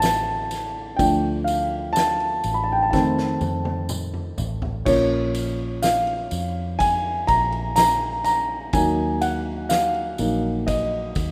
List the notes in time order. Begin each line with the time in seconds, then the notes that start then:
Already playing: A1 E3 A3 C4 E5 G5
0.00 A5, snare, ride, tambourine
0.51 snare, ride, tambourine
0.96 D2 F3 A3 D4 G5, kick, ride, tambourine
1.44 F5, ride, tambourine
1.93 A5, ride, tambourine
1.97 snare
2.20 ride
2.44 A1, ride, tambourine
2.54 B5
2.64 A5
2.72 G5
2.83 A5
2.91 F2 D#3 A3 C4 A5, kick, snare, tambourine
3.18 snare
3.41 F2, high tom, tambourine
3.65 high tom
3.89 mid tom, tambourine
4.14 mid tom
4.38 A1, floor tom, tambourine
4.62 floor tom
4.85 A#1 F3 A#3 C#4 C#5, kick, crash, tambourine
5.34 ride, tambourine
5.82 F5, snare, ride, tambourine
6.07 ride
6.31 F2, ride, tambourine
6.79 G#5, kick, ride, tambourine
7.27 A#1 A#5, kick, ride, tambourine
7.52 ride
7.76 A#5, snare, ride, tambourine
8.24 A#5, snare, ride, tambourine
8.73 D#2 F#3 A#3 D#4 G#5, kick, ride, tambourine
9.21 F#5, ride, tambourine
9.69 F5, snare, ride, tambourine
9.94 ride
10.18 A#1 F#3 A#3 D#4, ride, tambourine
10.67 D#5, kick, ride, tambourine
11.15 D#2, kick, ride, tambourine